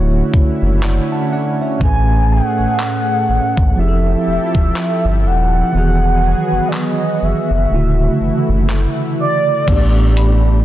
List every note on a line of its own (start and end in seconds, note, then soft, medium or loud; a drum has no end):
0.00 0.22 D1 loud
0.00 1.76 D3 medium
0.00 1.79 D3 medium
0.00 1.77 A3 medium
0.00 3.74 C#4 medium
0.00 1.77 E4 medium
0.00 1.79 E4 medium
0.00 1.77 F#4 medium
0.00 1.78 F#4 medium
0.00 0.83 C#5 medium
0.34 0.45 F#1 soft
0.34 kick medium
0.62 1.00 F#1 medium
0.83 1.10 D5 medium
0.83 1.10 F#5 medium
0.83 clap loud
1.12 1.31 F#5 medium
1.12 1.31 A5 medium
1.33 1.60 D5 medium
1.33 1.59 F#5 medium
1.61 2.08 C#5 medium
1.61 2.08 E5 medium
1.79 2.41 A1 loud
1.79 3.73 A2 medium
1.79 3.73 A3 medium
1.79 3.76 A3 medium
1.79 3.74 C#4 medium
1.79 3.76 G#4 medium
1.79 2.33 G#5 loud
1.79 kick loud
1.84 3.75 G#4 medium
1.84 3.76 B4 medium
2.32 3.79 F#5 loud
2.59 2.67 G#1 soft
2.80 clap loud
3.29 3.40 G#1 soft
3.57 3.73 G#1 medium
3.57 kick medium
3.76 4.15 F1 medium
3.76 5.70 F3 medium
3.76 5.72 F3 medium
3.76 5.70 C4 medium
3.76 5.72 E4 medium
3.76 5.71 E4 medium
3.76 5.72 G4 medium
3.76 5.72 A4 medium
3.76 5.28 E5 loud
3.80 5.72 G4 medium
3.80 3.87 G#4 medium
3.88 5.76 A4 medium
4.27 4.38 E1 soft
4.55 4.71 E1 medium
4.55 kick medium
4.76 clap loud
5.05 5.27 G1 medium
5.25 5.63 D#1 medium
5.25 6.70 F#5 loud
5.72 6.34 E1 loud
5.72 7.68 D#3 medium
5.72 7.66 E3 medium
5.72 7.69 F#3 medium
5.72 7.67 B3 medium
5.72 7.69 B3 medium
5.72 9.64 F#4 medium
5.72 7.69 G#4 medium
5.77 7.68 F#4 medium
5.77 7.69 G#4 medium
6.52 6.60 F#1 soft
6.68 6.76 D5 medium
6.73 7.25 D#5 medium
6.73 clap loud
7.22 7.33 F#1 soft
7.22 8.70 E5 medium
7.50 7.66 F#1 medium
7.69 8.09 D1 medium
7.69 9.64 C#3 medium
7.69 9.63 D3 medium
7.69 9.66 E3 medium
7.69 9.66 A3 medium
7.69 9.64 A3 medium
7.69 9.66 E4 medium
7.74 9.65 E4 medium
7.74 9.66 F#4 medium
8.20 8.32 F#1 soft
8.49 8.87 F#1 medium
8.70 clap loud
9.20 10.63 D5 loud
9.66 10.65 A1 loud
9.66 10.65 A2 medium
9.66 10.65 A3 medium
9.66 10.65 B3 medium
9.66 10.65 D4 medium
9.66 10.65 G4 medium
9.66 kick loud
9.66 closed hi-hat medium
9.66 crash loud
9.71 10.65 D4 medium
9.71 10.65 G4 medium
10.17 10.65 B5 medium
10.17 closed hi-hat medium